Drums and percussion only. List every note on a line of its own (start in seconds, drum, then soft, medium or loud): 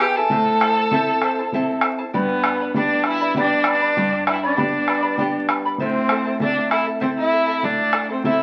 0.30 bombo low medium
0.47 bombo rim soft
0.61 bombo rim medium
0.91 bombo low medium
1.22 bombo rim medium
1.37 bombo rim soft
1.52 bombo low medium
1.81 bombo rim medium
2.14 bombo low medium
2.29 bombo rim soft
2.44 bombo rim medium
2.74 bombo rim soft
2.74 bombo low medium
3.04 bombo rim medium
3.34 bombo rim soft
3.34 bombo low medium
3.64 bombo rim medium
3.97 bombo low medium
4.13 bombo rim soft
4.27 bombo rim medium
4.58 bombo rim soft
4.58 bombo low medium
4.88 bombo rim medium
5.18 bombo rim soft
5.18 bombo low medium
5.49 bombo rim medium
5.78 bombo low medium
5.94 bombo rim soft
6.09 bombo rim medium
6.40 bombo rim soft
6.40 bombo low medium
6.71 bombo rim medium
7.01 bombo rim soft
7.01 bombo low medium
7.63 bombo low medium
7.93 bombo rim medium
8.24 bombo low medium